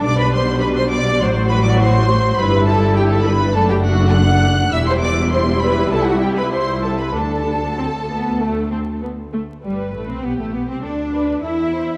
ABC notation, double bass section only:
X:1
M:4/4
L:1/16
Q:1/4=100
K:G
V:1 name="Double bass section" clef=bass
B,,,8 A,,,8 | G,,,8 F,,,8 | E,,,8 C,,8 | D,,12- D,,2 z2 |
G,,,2 A,,, C,, B,,, A,,, B,,, C,, D,,4 E,,4 |]